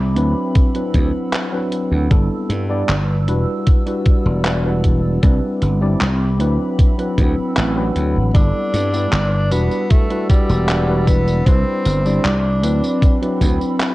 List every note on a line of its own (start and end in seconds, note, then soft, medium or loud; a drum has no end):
0.00 0.16 C2 loud
0.00 2.08 C4 medium
0.00 2.08 B5 medium
0.16 0.33 D2 medium
0.16 0.70 F#3 medium
0.16 0.70 C4 medium
0.16 0.71 D4 medium
0.16 0.71 E4 medium
0.16 0.71 B4 medium
0.16 2.09 F#5 medium
0.16 2.10 E6 medium
0.16 closed hi-hat medium
0.55 kick loud
0.55 closed hi-hat medium
0.74 1.48 F#3 medium
0.74 1.48 C4 medium
0.74 1.49 D4 medium
0.74 1.49 E4 medium
0.74 1.49 B4 medium
0.74 closed hi-hat soft
0.94 1.11 D2 loud
0.94 kick medium
0.94 closed hi-hat medium
1.33 clap loud
1.33 closed hi-hat medium
1.52 2.06 F#3 medium
1.52 2.07 C4 medium
1.52 2.07 D4 medium
1.52 2.07 E4 medium
1.52 2.07 B4 medium
1.72 closed hi-hat medium
1.92 2.08 D2 medium
2.10 2.28 G1 medium
2.10 2.65 G3 medium
2.10 2.65 B3 medium
2.10 2.65 D4 medium
2.10 2.66 E4 medium
2.10 2.66 A4 medium
2.10 5.20 E6 medium
2.10 kick loud
2.10 closed hi-hat medium
2.49 2.82 G2 medium
2.49 closed hi-hat medium
2.69 2.94 G3 medium
2.69 2.94 B3 medium
2.69 2.94 D4 medium
2.69 2.94 E4 medium
2.69 2.94 D5 loud
2.89 3.28 G1 loud
2.89 clap loud
2.89 closed hi-hat medium
3.28 3.45 E1 medium
3.28 3.82 G3 medium
3.28 3.82 D4 medium
3.28 3.82 E4 medium
3.28 3.83 F#4 medium
3.28 3.83 B4 medium
3.28 5.21 D5 medium
3.28 5.21 F#5 medium
3.28 closed hi-hat medium
3.67 kick loud
3.67 closed hi-hat medium
3.86 4.60 G3 medium
3.86 4.60 D4 medium
3.86 4.60 E4 medium
3.86 4.60 F#4 medium
3.86 4.61 B4 medium
3.86 closed hi-hat soft
4.06 kick loud
4.06 closed hi-hat medium
4.26 5.18 E1 loud
4.45 clap loud
4.45 closed hi-hat medium
4.64 5.18 G3 medium
4.64 5.18 D4 medium
4.64 5.19 E4 medium
4.64 5.19 F#4 medium
4.64 5.19 B4 medium
4.84 kick medium
4.84 closed hi-hat medium
5.22 5.39 C2 medium
5.22 5.77 G3 medium
5.22 5.77 C4 medium
5.22 5.77 D4 medium
5.22 5.77 E4 medium
5.22 5.78 B4 medium
5.22 8.32 B5 medium
5.22 kick loud
5.22 closed hi-hat medium
5.62 5.94 G1 medium
5.62 closed hi-hat medium
5.81 6.05 G3 medium
5.81 6.06 C4 medium
5.81 6.06 D4 medium
5.81 6.06 E4 medium
5.81 6.06 D5 loud
6.01 6.40 C2 loud
6.01 clap loud
6.01 closed hi-hat medium
6.39 6.57 D2 medium
6.39 6.94 F#3 medium
6.39 8.33 C4 medium
6.39 6.94 C4 medium
6.39 6.94 D4 medium
6.39 6.94 E4 medium
6.39 6.95 B4 medium
6.39 8.33 F#5 medium
6.39 8.33 E6 medium
6.39 closed hi-hat medium
6.79 kick loud
6.79 closed hi-hat medium
6.98 7.72 F#3 medium
6.98 7.72 C4 medium
6.98 7.72 D4 medium
6.98 7.72 E4 medium
6.98 7.72 B4 medium
6.98 closed hi-hat soft
7.18 7.34 D2 loud
7.18 kick medium
7.18 closed hi-hat medium
7.38 muted slap bass stroke soft
7.57 7.89 A1 medium
7.57 clap loud
7.57 closed hi-hat medium
7.76 8.30 F#3 medium
7.76 8.30 C4 medium
7.76 8.30 D4 medium
7.76 8.30 E4 medium
7.76 8.30 B4 medium
7.96 8.18 D2 medium
7.96 closed hi-hat medium
8.16 8.32 A1 medium
8.34 8.51 G1 medium
8.34 8.88 G3 medium
8.34 8.89 B3 medium
8.34 8.89 D4 medium
8.34 9.53 D4 loud
8.34 8.89 E4 medium
8.34 8.89 A4 medium
8.34 kick loud
8.34 closed hi-hat medium
8.34 tambourine soft
8.74 9.06 G2 medium
8.74 closed hi-hat medium
8.74 tambourine medium
8.93 9.17 G3 medium
8.93 9.17 B3 medium
8.93 9.17 D4 medium
8.93 9.17 E4 medium
8.93 9.18 D5 medium
8.93 tambourine soft
9.13 9.52 G1 loud
9.13 clap loud
9.13 closed hi-hat medium
9.13 tambourine soft
9.51 9.68 E1 medium
9.51 10.06 G3 medium
9.51 9.92 B3 loud
9.51 10.06 D4 medium
9.51 10.06 E4 medium
9.51 10.06 F#4 medium
9.51 10.06 B4 medium
9.51 11.44 D5 medium
9.51 11.45 F#5 medium
9.51 11.44 E6 medium
9.51 closed hi-hat medium
9.51 tambourine medium
9.71 tambourine soft
9.90 10.28 A3 loud
9.90 kick loud
9.90 closed hi-hat medium
9.90 tambourine soft
10.10 10.83 G3 medium
10.10 10.84 D4 medium
10.10 10.84 E4 medium
10.10 10.84 F#4 medium
10.10 10.84 B4 medium
10.10 closed hi-hat soft
10.29 11.09 G3 loud
10.29 kick loud
10.29 closed hi-hat medium
10.29 tambourine medium
10.49 11.41 E1 loud
10.49 tambourine soft
10.69 clap loud
10.69 closed hi-hat medium
10.69 tambourine soft
10.88 11.42 G3 medium
10.88 11.42 D4 medium
10.88 11.42 E4 medium
10.88 11.42 F#4 medium
10.88 11.42 B4 medium
11.07 11.47 B3 medium
11.07 kick medium
11.07 closed hi-hat medium
11.07 tambourine medium
11.28 tambourine soft
11.46 11.63 C2 medium
11.46 12.00 G3 medium
11.46 12.26 C4 loud
11.46 13.95 C4 medium
11.46 12.01 C4 medium
11.46 12.01 D4 medium
11.46 12.01 E4 medium
11.46 12.01 B4 medium
11.46 kick loud
11.46 closed hi-hat medium
11.46 tambourine soft
11.85 12.18 G1 medium
11.85 closed hi-hat medium
11.85 tambourine medium
12.05 12.29 G3 medium
12.05 12.29 C4 medium
12.05 12.29 D4 medium
12.05 12.29 E4 medium
12.05 12.30 D5 medium
12.05 tambourine soft
12.24 12.63 C2 loud
12.24 13.41 D4 medium
12.24 clap loud
12.24 closed hi-hat medium
12.24 tambourine soft
12.62 12.80 D2 medium
12.62 13.17 F#3 medium
12.62 13.17 C4 medium
12.62 13.17 D4 medium
12.62 13.18 E4 medium
12.62 13.18 B4 medium
12.62 13.95 F#5 medium
12.62 13.95 B5 medium
12.62 13.95 E6 medium
12.62 closed hi-hat medium
12.62 tambourine medium
12.84 tambourine soft
13.02 kick loud
13.02 closed hi-hat medium
13.02 tambourine soft
13.21 13.95 F#3 medium
13.21 13.95 C4 medium
13.21 13.95 D4 medium
13.21 13.95 E4 medium
13.21 13.95 B4 medium
13.21 closed hi-hat soft
13.41 13.58 D2 loud
13.41 kick medium
13.41 closed hi-hat medium
13.41 tambourine medium
13.61 tambourine soft
13.80 clap loud
13.80 closed hi-hat medium
13.80 tambourine soft